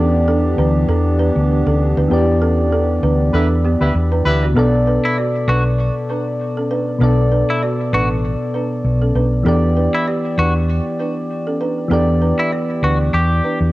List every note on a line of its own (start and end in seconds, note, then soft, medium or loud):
0.00 0.54 E2 loud
0.00 2.06 E3 medium
0.00 4.52 E3 medium
0.00 2.07 B3 medium
0.00 4.52 B3 medium
0.00 4.52 D4 medium
0.00 2.07 G4 medium
0.00 4.52 G4 medium
0.00 2.08 D5 medium
0.28 0.37 D4 medium
0.28 0.36 A4 medium
0.58 0.84 D2 medium
0.58 0.68 D4 medium
0.58 0.67 B4 medium
0.88 1.29 E2 loud
0.88 0.98 D4 medium
0.88 0.98 A4 medium
1.20 1.29 D4 medium
1.20 1.28 B4 medium
1.36 1.62 D2 medium
1.67 1.93 D2 medium
1.67 1.75 C#4 medium
1.67 1.74 A4 medium
1.97 2.09 D2 medium
1.97 2.05 D4 medium
1.97 2.05 B4 medium
2.09 2.99 E2 loud
2.09 4.51 E3 medium
2.09 4.52 B3 medium
2.09 2.21 D4 medium
2.09 4.52 G4 medium
2.09 2.20 B4 loud
2.14 4.53 D5 medium
2.42 2.51 C#4 medium
2.42 2.51 A4 medium
2.73 2.82 D4 medium
2.73 2.81 A4 medium
3.03 3.29 D2 medium
3.03 3.12 D4 medium
3.03 3.12 B4 medium
3.33 3.74 E2 loud
3.33 3.48 B3 medium
3.33 3.43 D4 medium
3.33 3.48 E4 medium
3.33 3.48 G4 medium
3.33 3.43 A4 medium
3.33 3.48 B4 medium
3.65 3.74 B3 medium
3.65 3.73 G4 medium
3.81 3.93 D2 loud
3.81 3.93 B3 medium
3.81 3.93 E4 medium
3.81 3.93 G4 medium
3.81 3.93 B4 loud
3.95 4.21 E2 loud
4.12 4.20 D4 medium
4.12 4.19 B4 medium
4.25 4.52 D2 loud
4.25 4.45 B3 medium
4.25 4.45 E4 medium
4.25 4.45 G4 medium
4.25 4.45 B4 loud
4.42 4.50 F#4 medium
4.42 4.50 D5 medium
4.53 4.97 B1 loud
4.53 6.96 B2 medium
4.53 6.96 B3 medium
4.53 4.66 D4 medium
4.53 4.65 A4 loud
4.53 6.97 A4 medium
4.59 6.98 D5 medium
4.87 4.96 D4 medium
4.87 4.96 B4 medium
5.05 5.16 E4 medium
5.18 5.27 F#4 medium
5.18 5.26 D5 medium
5.47 5.88 B1 medium
5.47 5.58 D4 medium
5.47 5.63 F#4 medium
5.47 5.57 B4 medium
6.10 6.19 D4 medium
6.10 6.18 B4 medium
6.57 6.65 C#4 medium
6.57 6.64 A4 medium
6.71 6.80 D4 medium
6.71 6.79 B4 medium
6.98 7.42 B1 loud
6.98 9.41 B2 medium
6.98 9.41 B3 medium
6.98 7.11 D4 medium
6.98 7.10 A4 loud
6.98 9.42 A4 medium
7.03 9.43 D5 medium
7.32 7.41 D4 medium
7.32 7.41 B4 medium
7.50 7.61 E4 medium
7.63 7.72 F#4 medium
7.63 7.71 D5 medium
7.93 8.34 A1 medium
7.93 8.02 D4 medium
7.93 8.08 F#4 medium
7.93 8.02 B4 medium
8.54 8.64 D4 medium
8.54 8.63 B4 medium
8.85 9.11 B1 medium
9.02 9.09 C#4 medium
9.02 9.09 A4 medium
9.15 9.42 B1 loud
9.15 9.25 D4 medium
9.15 9.24 B4 medium
9.43 9.87 E2 loud
9.43 11.85 E3 medium
9.43 11.86 B3 medium
9.43 9.55 D4 medium
9.43 11.87 G4 medium
9.43 9.55 A4 loud
9.48 11.88 D5 medium
9.77 9.86 D4 medium
9.77 9.85 B4 medium
9.95 10.06 E4 medium
10.07 10.17 G4 medium
10.07 10.16 D5 medium
10.38 10.79 E2 medium
10.38 10.47 D4 medium
10.38 10.53 F#4 medium
10.38 10.47 B4 medium
10.99 11.09 D4 medium
10.99 11.08 B4 medium
11.47 11.54 C#4 medium
11.47 11.54 A4 medium
11.61 11.70 D4 medium
11.61 11.69 B4 medium
11.88 12.32 E2 loud
11.88 13.72 E3 medium
11.88 13.72 B3 medium
11.88 12.01 D4 medium
11.88 13.72 G4 medium
11.88 12.00 A4 loud
11.93 13.72 D5 medium
12.22 12.31 D4 medium
12.22 12.30 B4 medium
12.39 12.51 E4 medium
12.52 12.62 G4 medium
12.52 12.61 D5 medium
12.83 13.09 D2 medium
12.83 12.92 D4 medium
12.83 12.98 F#4 medium
12.83 12.92 B4 medium
13.13 13.40 E2 medium
13.13 13.58 G4 medium
13.44 13.54 D4 medium
13.44 13.53 B4 medium
13.61 13.72 E2 medium